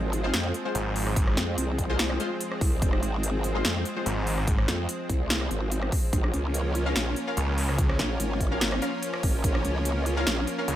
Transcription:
0.00 0.32 G#1 loud
0.00 6.09 F3 medium
0.00 6.09 G#3 medium
0.00 6.09 C4 medium
0.13 closed hi-hat medium
0.24 0.34 G#3 medium
0.24 0.34 F4 medium
0.24 0.34 C5 loud
0.34 0.53 F2 loud
0.34 snare loud
0.34 closed hi-hat medium
0.54 closed hi-hat medium
0.65 0.75 G#3 medium
0.65 0.75 F4 medium
0.65 0.75 C5 medium
0.75 1.36 G#1 loud
0.75 closed hi-hat medium
0.96 open hi-hat medium
1.07 cross-stick medium
1.16 kick loud
1.16 closed hi-hat medium
1.27 cross-stick medium
1.37 1.56 F2 loud
1.37 snare medium
1.37 closed hi-hat medium
1.58 2.18 C2 loud
1.58 closed hi-hat medium
1.78 kick medium
1.78 closed hi-hat medium
1.89 1.99 G#3 medium
1.89 1.99 F4 medium
1.89 1.99 C5 loud
1.99 snare loud
1.99 closed hi-hat medium
2.10 cross-stick medium
2.20 2.31 G#3 medium
2.20 2.31 F4 medium
2.20 2.31 C5 loud
2.20 closed hi-hat medium
2.41 closed hi-hat medium
2.52 cross-stick medium
2.61 2.80 C2 loud
2.61 kick loud
2.61 open hi-hat loud
2.82 3.01 F1 loud
2.82 kick loud
2.82 closed hi-hat medium
2.93 cross-stick medium
3.03 3.63 G#1 loud
3.03 closed hi-hat medium
3.23 closed hi-hat medium
3.44 closed hi-hat medium
3.55 3.65 G#3 medium
3.55 3.65 F4 medium
3.55 3.65 C5 loud
3.65 3.84 F2 loud
3.65 snare loud
3.65 closed hi-hat medium
3.85 closed hi-hat medium
3.96 4.06 G#3 medium
3.96 4.06 F4 medium
3.96 4.06 C5 medium
4.06 4.67 G#1 loud
4.06 closed hi-hat medium
4.27 open hi-hat medium
4.38 cross-stick soft
4.47 kick loud
4.47 closed hi-hat medium
4.58 cross-stick medium
4.68 4.87 F2 loud
4.68 snare medium
4.68 closed hi-hat medium
4.89 closed hi-hat medium
5.09 5.49 C2 loud
5.09 kick medium
5.09 closed hi-hat medium
5.30 snare loud
5.30 closed hi-hat medium
5.41 cross-stick medium
5.51 5.91 G#1 loud
5.51 closed hi-hat medium
5.72 closed hi-hat medium
5.82 cross-stick medium
5.92 kick loud
5.92 open hi-hat medium
6.13 6.32 A#1 loud
6.13 10.76 F3 medium
6.13 10.76 A#3 medium
6.13 10.76 C#4 medium
6.13 kick loud
6.13 closed hi-hat medium
6.24 cross-stick medium
6.34 6.94 C#2 loud
6.34 closed hi-hat soft
6.54 closed hi-hat medium
6.75 closed hi-hat medium
6.86 6.96 C#4 medium
6.86 6.96 A#4 medium
6.86 6.96 F5 loud
6.96 7.15 A#1 loud
6.96 snare loud
6.96 closed hi-hat medium
7.16 closed hi-hat medium
7.27 7.37 C#4 medium
7.27 7.37 A#4 medium
7.27 7.37 F5 medium
7.37 7.98 C#2 loud
7.37 closed hi-hat medium
7.58 open hi-hat medium
7.69 cross-stick soft
7.78 kick loud
7.78 closed hi-hat medium
7.89 cross-stick medium
7.99 8.18 A#1 loud
7.99 snare medium
7.99 closed hi-hat medium
8.20 8.80 G#1 loud
8.20 closed hi-hat medium
8.40 kick medium
8.40 closed hi-hat soft
8.51 8.61 C#4 medium
8.51 8.61 A#4 medium
8.51 8.61 F5 medium
8.61 snare loud
8.61 closed hi-hat medium
8.72 cross-stick medium
8.82 8.93 C#4 medium
8.82 8.93 A#4 medium
8.82 8.93 F5 loud
8.82 closed hi-hat medium
9.03 closed hi-hat medium
9.14 cross-stick medium
9.23 9.42 G#1 loud
9.23 kick loud
9.23 open hi-hat medium
9.44 9.63 A#1 loud
9.44 kick loud
9.44 closed hi-hat medium
9.55 cross-stick medium
9.65 10.25 C#2 loud
9.65 closed hi-hat medium
9.85 closed hi-hat medium
10.06 closed hi-hat medium
10.17 10.27 C#4 medium
10.17 10.27 A#4 medium
10.17 10.27 F5 loud
10.27 10.46 A#1 loud
10.27 snare loud
10.27 closed hi-hat medium
10.47 closed hi-hat medium
10.58 10.68 C#4 medium
10.58 10.68 A#4 medium
10.58 10.68 F5 medium
10.68 10.76 C#2 loud
10.68 closed hi-hat medium

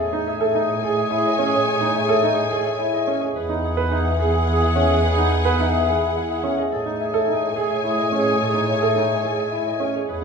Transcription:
0.00 3.20 A2 medium
0.00 0.20 G#4 soft
0.00 0.82 A4 loud
0.00 3.05 B4 loud
0.00 3.17 C#5 medium
0.00 0.54 D#5 medium
0.00 0.26 E5 medium
0.00 3.18 G#5 medium
0.13 0.31 D#4 medium
0.27 0.48 G#4 medium
0.27 0.96 E5 medium
0.41 0.59 A4 medium
0.55 0.73 D#4 medium
0.55 0.78 G#4 medium
0.55 1.24 D#5 medium
0.83 1.01 G#4 medium
0.83 1.66 A4 loud
0.87 1.07 G#4 medium
0.97 1.94 E5 medium
1.11 1.29 E4 medium
1.16 1.37 G#4 medium
1.26 2.22 D#5 medium
1.39 1.57 C#4 medium
1.46 1.66 G#4 loud
1.53 1.71 G#4 medium
1.53 3.20 C#5 medium
1.68 2.51 A4 loud
1.75 1.95 G#4 medium
1.81 1.99 D#4 medium
1.96 2.65 E5 medium
2.04 2.25 G#4 medium
2.09 2.27 A4 loud
2.23 2.41 D#4 medium
2.23 2.93 D#5 medium
2.33 2.54 G#4 medium
2.51 2.69 G#4 medium
2.51 3.38 A4 loud
2.62 2.83 G#4 medium
2.62 3.90 E5 medium
2.79 2.97 E4 medium
2.91 3.12 G#4 soft
2.91 4.89 D#5 medium
3.07 3.26 C#4 medium
3.21 3.40 G#4 medium
3.21 3.38 C#5 medium
3.36 6.57 E2 medium
3.36 3.56 G#4 soft
3.36 6.54 G#4 medium
3.36 4.19 B4 loud
3.36 6.54 F#5 medium
3.49 3.68 D#4 medium
3.64 3.85 G#4 medium
3.64 4.33 F#5 medium
3.77 3.96 B4 loud
3.91 4.10 D#4 medium
3.91 4.14 G#4 medium
3.91 4.60 E5 medium
4.20 4.38 G#4 medium
4.20 4.44 G#4 medium
4.20 5.02 B4 loud
4.34 5.30 F#5 medium
4.48 4.66 E4 medium
4.53 4.73 G#4 loud
4.61 5.58 E5 medium
4.76 4.94 C#4 medium
4.82 5.03 G#4 medium
4.90 5.08 G#4 medium
4.90 6.57 D#5 medium
5.03 5.87 B4 loud
5.11 5.32 G#4 medium
5.17 5.36 D#4 medium
5.32 6.01 F#5 medium
5.41 5.61 G#4 medium
5.45 5.64 B4 loud
5.59 5.78 D#4 medium
5.59 6.29 E5 medium
5.70 5.90 G#4 medium
5.87 6.06 G#4 medium
5.87 9.78 B4 loud
5.99 6.20 G#4 medium
5.99 6.74 F#5 medium
6.15 6.34 E4 medium
6.28 6.49 G#4 soft
6.28 6.99 E5 medium
6.44 6.62 C#4 medium
6.57 6.76 G#4 medium
6.57 7.27 D#5 medium
6.71 9.93 A2 medium
6.71 6.92 G#4 soft
6.71 7.55 A4 loud
6.71 9.90 C#5 medium
6.71 9.90 G#5 medium
6.86 7.04 D#4 medium
7.00 7.22 G#4 medium
7.00 7.69 E5 medium
7.14 7.32 A4 medium
7.28 7.46 D#4 medium
7.28 7.51 G#4 medium
7.28 7.97 D#5 medium
7.56 7.74 G#4 medium
7.56 8.39 A4 loud
7.60 7.80 G#4 medium
7.70 8.68 E5 medium
7.84 8.02 E4 medium
7.89 8.10 G#4 medium
7.98 8.96 D#5 medium
8.12 8.30 C#4 medium
8.19 8.39 G#4 medium
8.26 8.44 G#4 medium
8.26 9.93 C#5 medium
8.41 9.24 A4 medium
8.48 8.68 G#4 medium
8.54 8.72 D#4 medium
8.69 9.37 E5 medium
8.78 8.98 G#4 medium
8.82 9.00 A4 medium
8.96 9.14 D#4 medium
8.96 9.66 D#5 medium
9.07 9.27 G#4 medium
9.24 9.42 G#4 medium
9.24 10.11 A4 loud
9.36 9.56 G#4 medium
9.36 10.24 E5 medium
9.52 9.70 E4 medium
9.66 9.86 G#4 soft
9.66 10.24 D#5 medium
9.80 9.98 C#4 medium
9.94 10.12 G#4 medium
9.94 10.11 C#5 medium
10.08 10.24 E2 medium
10.08 10.24 G#4 medium
10.08 10.24 G#4 soft
10.08 10.24 B4 medium
10.08 10.24 F#5 medium

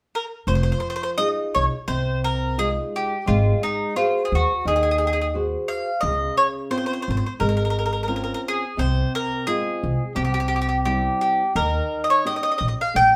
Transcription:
0.15 0.24 A#4 medium
0.47 0.71 F1 medium
0.47 1.16 F3 soft
0.47 0.54 C5 medium
0.55 0.62 C5 soft
0.63 0.71 C5 medium
0.72 0.79 C5 medium
0.80 0.87 C5 medium
0.90 0.95 C5 medium
0.96 1.02 C5 medium
1.03 1.10 C5 medium
1.18 1.73 D#4 soft
1.18 1.74 F4 soft
1.18 1.74 G#4 soft
1.18 1.27 D#5 medium
1.55 1.66 C2 medium
1.55 1.64 C#5 medium
1.88 2.78 C2 medium
1.88 2.55 C3 medium
1.88 2.21 C5 medium
2.24 2.58 A#4 medium
2.58 3.13 G#3 soft
2.58 3.13 D#4 soft
2.58 3.13 F4 soft
2.58 2.68 G#4 medium
2.96 3.25 G4 medium
3.26 3.51 G#1 loud
3.26 3.93 G#3 medium
3.26 3.60 F4 medium
3.63 3.93 D#4 medium
3.95 4.22 F4 medium
3.95 4.51 F#4 soft
3.95 4.51 G#4 soft
3.95 4.51 C5 soft
4.25 4.32 G#4 soft
4.32 4.43 D#2 medium
4.32 4.67 F#4 medium
4.65 5.55 D#2 medium
4.65 5.32 D#3 medium
4.65 4.73 G#4 medium
4.76 4.81 G#4 medium
4.83 4.89 G#4 medium
4.91 4.97 G#4 soft
4.98 5.04 G#4 medium
5.07 5.12 G#4 soft
5.13 5.18 G#4 medium
5.21 5.26 G#4 soft
5.34 5.89 F#4 soft
5.34 5.89 G#4 soft
5.34 5.90 C5 soft
5.68 5.99 F5 medium
6.01 6.26 C#2 medium
6.01 6.70 C#3 medium
6.01 6.35 D#5 medium
6.37 6.46 C#5 medium
6.70 7.26 C4 soft
6.70 7.26 C#4 soft
6.70 7.26 F4 soft
6.70 6.76 C5 medium
6.78 6.85 C5 medium
6.86 6.92 C5 medium
6.93 7.01 C5 soft
7.02 7.09 C5 medium
7.08 7.18 G#1 medium
7.08 7.16 C5 soft
7.17 7.24 C5 soft
7.26 7.33 C5 soft
7.39 8.30 G#1 medium
7.39 8.06 G#3 medium
7.39 7.48 A#4 medium
7.49 7.56 A#4 soft
7.57 7.64 A#4 medium
7.65 7.69 A#4 soft
7.70 7.77 A#4 medium
7.79 7.84 A#4 soft
7.86 7.91 A#4 medium
7.93 8.00 A#4 soft
8.03 8.07 A#4 soft
8.08 8.63 C4 soft
8.08 8.64 C#4 soft
8.08 8.64 F4 soft
8.08 8.15 A#4 soft
8.16 8.22 A#4 soft
8.24 8.31 A#4 soft
8.34 8.40 A#4 medium
8.48 8.77 G#4 medium
8.77 9.01 C2 medium
8.77 9.44 C3 medium
8.77 9.12 C5 medium
9.15 9.45 A#4 medium
9.47 10.02 G#3 soft
9.47 10.03 C4 soft
9.47 10.03 F4 soft
9.47 10.12 G#4 medium
9.83 9.94 C2 medium
10.15 11.07 C2 medium
10.15 10.83 C3 medium
10.15 10.23 G4 medium
10.25 10.32 G4 medium
10.34 10.39 G4 medium
10.40 10.47 G4 medium
10.48 10.55 G4 medium
10.56 10.60 G4 soft
10.62 10.68 G4 medium
10.69 10.77 G4 soft
10.85 11.42 G3 soft
10.85 11.42 C4 soft
10.85 11.42 E4 soft
10.85 11.20 G4 medium
11.21 11.53 G4 medium
11.55 11.79 D#2 medium
11.55 12.23 D#3 medium
11.55 12.01 A#4 medium
12.04 12.08 D#5 medium
12.10 12.25 C#5 medium
12.25 12.80 C#4 soft
12.25 12.80 D#4 soft
12.25 12.81 G4 soft
12.25 12.34 D#5 medium
12.36 12.42 D#5 soft
12.43 12.50 D#5 medium
12.52 12.57 D#5 soft
12.58 12.72 A#1 medium
12.58 12.65 D#5 medium
12.68 12.73 D#5 soft
12.81 12.96 F5 medium
12.94 13.16 A#1 medium
12.94 13.16 A#3 soft
12.94 13.16 G5 medium

